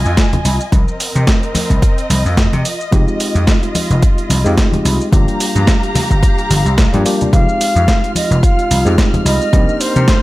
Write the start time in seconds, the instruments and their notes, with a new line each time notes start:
Already playing: string section F4 D#5 G#5
0.05 slap bass F2, shaker
0.17 kick, snare, closed hi-hat, shaker
0.33 closed hi-hat, high conga, low conga, shaker
0.45 slap bass C2, open hi-hat, shaker
0.61 shaker
0.72 slap bass C2, string section C4 A#4 D#5, kick, closed hi-hat, high conga, shaker
0.88 shaker
1.00 open hi-hat, shaker
1.15 slap bass C3, closed hi-hat, high conga, shaker
1.27 kick, snare, closed hi-hat, shaker
1.43 closed hi-hat, shaker
1.55 muted slap bass stroke, snare, open hi-hat, high conga, shaker
1.70 slap bass C2, kick, closed hi-hat, shaker
1.82 kick, closed hi-hat, shaker
1.98 closed hi-hat, shaker
2.10 slap bass C2, open hi-hat, high conga, shaker
2.25 slap bass F2, shaker
2.37 kick, snare, closed hi-hat, shaker
2.53 slap bass C3, closed hi-hat, high conga, shaker
2.65 string section F4, open hi-hat, shaker
2.81 shaker
2.91 slap bass F1, tine electric piano G#3 C4 D#4 F4 G4, kick, closed hi-hat, high conga, shaker
3.08 shaker
3.20 open hi-hat, shaker
3.35 slap bass F2, closed hi-hat, high conga, shaker
3.47 kick, snare, closed hi-hat, shaker
3.63 closed hi-hat, shaker
3.75 open hi-hat, high conga, shaker
3.90 slap bass F1, closed hi-hat, shaker
4.02 kick, closed hi-hat, shaker
4.18 closed hi-hat, shaker
4.30 slap bass C2, open hi-hat, high conga, shaker
4.44 slap bass F2, tine electric piano G#3 C4 D#4 F4 G4, shaker
4.58 kick, snare, closed hi-hat, shaker
4.73 closed hi-hat, high conga, low conga, shaker
4.85 slap bass C2, open hi-hat, shaker
5.01 shaker
5.12 slap bass G1, tine electric piano G3 A#3 D4 F4 G4, string section G4 F5 A#5, kick, closed hi-hat, high conga, shaker
5.28 closed hi-hat, shaker
5.40 open hi-hat, shaker
5.55 slap bass G2, closed hi-hat, high conga, shaker
5.67 kick, snare, closed hi-hat, shaker
5.83 closed hi-hat, shaker
5.95 muted slap bass stroke, snare, open hi-hat, high conga, low conga, shaker
6.10 slap bass G1, kick, closed hi-hat, shaker
6.23 kick, closed hi-hat, shaker
6.38 closed hi-hat, shaker
6.50 slap bass G1, open hi-hat, high conga, shaker
6.65 slap bass C2, closed hi-hat, shaker
6.78 kick, snare, closed hi-hat, shaker
6.93 slap bass G2, tine electric piano G3 A#3 D4 F4 G4, closed hi-hat, high conga, shaker
7.05 tine electric piano G3 A#3 D4 F4 G4, open hi-hat, shaker
7.21 closed hi-hat, low conga, shaker
7.32 slap bass F1, tine electric piano G#3 C4 D#4 F4 G4, string section F4 F6, flute F5, kick, closed hi-hat, high conga, shaker
7.49 shaker
7.61 open hi-hat, shaker
7.76 slap bass F2, closed hi-hat, high conga, shaker
7.88 kick, snare, closed hi-hat, shaker
8.04 closed hi-hat, shaker
8.15 flute D#5, open hi-hat, high conga, shaker
8.31 slap bass F1, closed hi-hat, shaker
8.43 flute F5, kick, closed hi-hat, shaker
8.59 closed hi-hat, shaker
8.71 slap bass C2, open hi-hat, high conga, shaker
8.85 slap bass F2, tine electric piano G#3 C4 D#4 F4 G4, shaker
8.98 kick, snare, closed hi-hat, shaker
9.14 closed hi-hat, high conga, low conga, shaker
9.25 slap bass C2, flute D#5, open hi-hat, shaker
9.41 shaker
9.53 slap bass C2, tine electric piano A#3 C4 D4 D#4 G4, string section C4 A#4, kick, closed hi-hat, high conga, shaker
9.69 shaker
9.81 flute C5, open hi-hat, shaker
9.96 slap bass C3, closed hi-hat, high conga, shaker
10.08 kick, snare, closed hi-hat, shaker